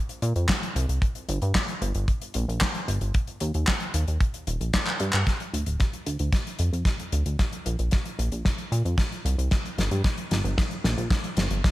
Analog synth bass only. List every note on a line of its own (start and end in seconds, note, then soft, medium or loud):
0.22 0.33 A#2 medium
0.36 0.46 F2 medium
0.76 0.86 C2 medium
0.89 1.00 C2 medium
1.29 1.39 G1 medium
1.42 1.53 G2 medium
1.82 1.93 G1 medium
1.95 2.06 G1 medium
2.35 2.46 A#1 medium
2.48 2.59 A#1 medium
2.88 2.99 G1 medium
3.01 3.12 G1 medium
3.41 3.52 D#2 medium
3.55 3.65 D#2 medium
3.94 4.05 D#2 medium
4.08 4.18 D#2 medium
4.47 4.58 D#1 medium
4.61 4.71 A#1 medium
5.00 5.11 G2 medium
5.14 5.24 G2 medium
5.53 5.64 D2 medium
5.67 5.77 D1 medium
6.06 6.17 D2 medium
6.20 6.31 D2 medium
6.59 6.70 F2 medium
6.73 6.84 F2 medium
7.13 7.23 D2 medium
7.26 7.37 D2 medium
7.66 7.76 A#1 loud
7.79 7.90 A#1 medium
8.19 8.30 A#1 medium
8.32 8.43 A#1 medium
8.72 8.83 A#2 medium
8.85 8.96 F2 medium
9.25 9.36 C2 medium
9.38 9.49 C2 medium
9.78 9.89 G1 medium
9.91 10.02 G2 medium
10.31 10.42 G1 medium
10.44 10.55 G1 medium
10.84 10.95 A#1 medium
10.98 11.08 A#1 medium
11.37 11.48 G1 medium
11.50 11.61 G1 medium